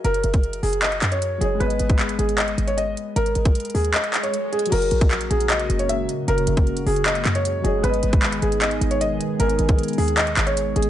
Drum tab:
CC |------------------------------------------------------------------------------------------------|------------------------------------------------------------------------------------------------|------------------------------------------------------------------------------------------------|x-----------------------------------------------------------------------------------------------|
HH |x-----x-----x-----x-----x-----x-----o-----x-----x-----x-----x-----x-----x-----------x-----------|x-----x-----x-----x-----x-----x-----x-----x-----x-----x-----x-----x-----x-----------x-----------|x-----x-----x-----x-----x--x--x--x--o-----x-----x-----x-----x-----x-----x-----------x---x---x---|x-----x-----x-----x-----x-----x-----x-----x-----x-----x-----x-----x-----x-----------x-----------|
CP |------------------------------------------------x-----------x-----------------------------------|------------------------x-----------------------x-----------------------------------------------|------------------------------------------------x-----------x-----------------------------------|------------------------x-----------------------x-----------------------------------------------|
BD |------------------o-----------------------------------------------------------------------------|------------------o-----------------------------------------------------------------------------|------------------o-----------------------------------------------------------------------------|------------------o-----------------------------------------------------------------------------|

CC |------------------------------------------------------------------------------------------------|------------------------------------------------------------------------------------------------|------------------------------------------------------------------------------------------------|
HH |x-----x-----x-----x-----x-----x-----o-----x-----x-----x-----x-----x-----x-----------x-----------|x-----x-----x-----x-----x-----x-----x-----x-----x-----x-----x-----x-----x-----------x-----------|x-----x-----x-----x-----x--x--x--x--o-----x-----x-----x-----x-----x-----x-----------x---x-------|
CP |------------------------------------------------x-----------x-----------------------------------|------------------------x-----------------------x-----------------------------------------------|------------------------------------------------x-----------x-----------------------------------|
BD |------------------o-----------------------------------------------------------------------------|------------------o-----------------------------------------------------------------------------|------------------o-----------------------------------------------------------------------------|